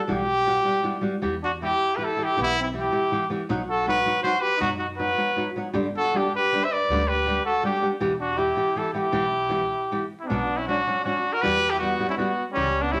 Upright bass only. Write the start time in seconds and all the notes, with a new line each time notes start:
0.09 B1
1.23 E2
2.39 B1
3.50 B1
4.60 F#2
5.75 G1
6.89 D2
8.01 E1
9.13 B1
10.30 B1
11.45 E2
12.56 C#2